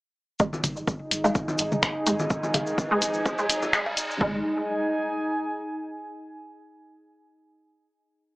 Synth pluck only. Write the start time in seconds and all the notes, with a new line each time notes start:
0.40 G#3
0.87 G#3
1.24 G#3
1.72 G#3
2.06 G#3
2.54 G#3
2.91 G#3
3.38 G#3
3.73 G#3
4.21 G#3